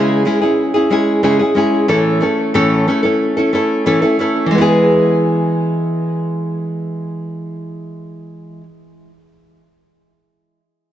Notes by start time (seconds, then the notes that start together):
Already playing: C#3 G#3 C#4 E4 G#4
0.25 G#3 C#4 E4 G#4
0.42 C#4 E4 G#4
0.74 C#4 E4 G#4
0.90 G#3 C#4 E4 G#4
1.23 C#3 G#3 C#4 E4 G#4
1.39 C#4 E4 G#4
1.55 G#3 C#4 E4 G#4
1.88 A2 E3 A3 C#4 E4 A4
2.20 A3 C#4 E4 A4
2.54 A2 E3 A3 C#4 E4 A4
2.88 A3 C#4 E4 A4
3.03 A3 C#4 E4 A4
3.37 A3 C#4 E4 A4
3.53 A3 C#4 E4 A4
3.86 A2 E3 A3 C#4 E4 A4
4.02 A3 C#4 E4 A4
4.19 A3 C#4 E4 A4
4.46 E3
4.51 G#3
4.55 B3 E4
4.61 G#4